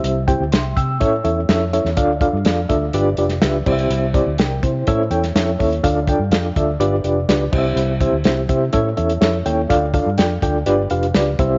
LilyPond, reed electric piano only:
\new Staff \with { instrumentName = "Reed electric piano" } { \time 4/4 \key d \minor \tempo 4 = 124 << { r4 <e'' c'''>8 <g'' e'''>4 r4. | r1 | r4 <bes' g''>8 <e' c''>4 r4. | r1 |
r1 | r1 | } \\ { <c' e' g' c'' e''>8 <c' e' g' c'' g''>8 r4 <cis' e' a' cis'' e''>8 <cis' e' a' cis'' e''>8 <cis' e' a' cis'' e''>8 <cis' e' a' cis'' e''>8 | <d' f' a' d'' f''>8 <d' f' a' d'' f''>8 <d' f' a' d'' f''>8 <d' f' a' d'' e''>8 <d' f' g' b' d''>8 <d' f' g' b' d''>8 <d' f' g' b' e''>8 <c' e' g' c'' d'' e''>8~ | <c' e' g' c'' d'' e''>8 <c' e' g' c'' d''>8 r4 <cis' e' a' cis'' e''>8 <cis' e' a' cis'' g''>8 <cis' e' a' cis'' e''>8 <cis' e' a' cis'' e''>8 | <d' f' a' d'' f''>8 <d' f' a' d'' g''>8 <d' f' a' d'' f''>8 <d' f' a' d'' e''>8 <d' f' g' b' d''>8 <d' f' g' b' d''>8 <d' f' g' b' d''>8 <c' e' g' c'' ees'' e''>8~ |
<c' e' g' c'' ees'' e''>8 <c' e' g' c'' e''>8 <c' e' g' c'' e''>8 <c' e' g' c'' e''>8 <cis' e' a' cis'' e''>8 <cis' e' a' cis'' e''>8 <cis' e' a' cis'' e''>8 <cis' e' a' cis'' g''>8 | <d' f' a' d'' f''>8 <d' f' a' d'' f''>8 <d' f' a' d'' g''>8 <d' f' a' d'' g''>8 <d' f' g' b' d''>8 <d' f' g' b' f''>8 <d' f' g' b' d''>8 <c' e' g' c'' e''>8 | } >> }